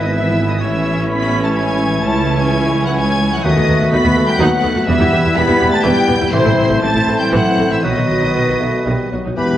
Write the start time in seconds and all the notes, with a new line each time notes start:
Already playing: G#1 G#2 E3 B3 E4 G#4 B4 E5 G#5
0.01 D#3 D#5 D#6
0.12 E3 B3 E4 E5 E6
0.29 B3
0.45 D#3 G#3
0.49 D#5 D#6
0.60 A1 A2 E3 C#4 E4 C#5 E5 E6
0.77 A3
0.93 C#5
1.08 B3 A4 B5 B6
1.24 E5
1.40 A3 A4 A5
1.45 A6
1.55 G#3 E4 G#5 G#6
1.71 A3
1.87 E3
2.01 C#2 C#3 E3 A3 C#4 E4 A5 A6
2.18 A3
2.34 G#3 C#5 G#5
2.38 G#6
2.50 A4
2.65 E5
2.80 F#3 A4 F#5
2.85 F#5 F#6
2.96 G#3 E4 G#5 G#6
3.12 A3
3.28 F#3 C#4
3.33 F#5 F#6
3.43 D#2 D#3 F#3 A3 B3 D#4 F#4 B4 D#5 D#6
3.56 D#2 A3 F#4
3.68 D#2 B3 A4
3.75 B4
3.80 D#2 A3 F#4
3.91 D#2 F#3 A3 B3 D#4 A4 B5 B6
4.04 D#2 A3 F#4 F#5
4.16 D#2 B3 A4
4.24 G3 A4 G5 G6
4.28 G5
4.38 D#2 F#3 A3 B3 D#4 F#4 F#5 F#6
4.56 A3
4.63 D#2 B3 A4
4.71 D#4
4.75 D#2 A3 F#4
4.87 E1 E2 E3 G3 B3 E4 E5 E6
5.00 E2 G3 E4
5.12 E1 E2 B3 G4
5.20 G4
5.24 E2 G3 E4
5.35 E1 E2 E3 G3 B3 E5 B5 B6
5.48 E2 G3 E4
5.52 B5
5.60 E1 E2 B3 G4
5.68 A3 E5 A6
5.72 A5
5.83 E1 E2 E3 G3 B3 B4 G5 G6
6.01 E4
6.08 E1 E2 B3 G4
6.17 E2 G3
6.21 G3 E4
6.32 A1 A2 C3 E3 A3 C4 E4 C5 C6
6.45 A1 A3 E4
6.49 A3
6.57 A1 C4 A4
6.66 A3 E4 C5
6.70 A1
6.81 A1 E3 A3 C4 E4 A4 C5 A5 A6
6.94 A1 A3 E4
6.99 E5
7.07 A1 C4 A4
7.16 A4 G5 G6
7.20 G3 G5
7.32 A1 E3 F#3 C4 E4 F#5 F#6
7.49 A3
7.58 A1 C4 A4
7.67 E3 E5
7.71 A1 E3 A3 E4 E5 E6
7.83 B1 B2 D#3 F#3 B3 F#4 B4 D#5 D#6
7.97 B1 F#3 D#4
8.01 B3
8.10 B1 B3 F#4
8.18 F#4
8.22 B1 F#3 D#4
8.35 B1 D#3 B3 B4
8.49 B1 F#3 D#4 B5
8.61 B1 A3 B3 F#4
8.69 B4
8.86 B1 D#3 G3 B3
9.04 F#3
9.12 B1 F#3 B3 F#4
9.21 B3
9.25 B1 F#3 D#4
9.37 E1 E2 E3 B3 G4 B4 B5
9.52 B2